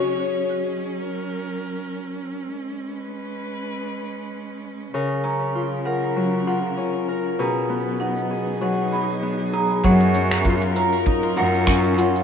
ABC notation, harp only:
X:1
M:4/4
L:1/16
Q:"Swing 16ths" 1/4=98
K:F#
V:1 name="Harp"
z16 | z16 | [C,A]2 C2 E2 A2 F,2 E2 C2 A2 | [B,,G]2 B,2 D2 G2 F,2 D2 B,2 G2 |
F,2 C2 E2 A2 D E A2 C2 E2 |]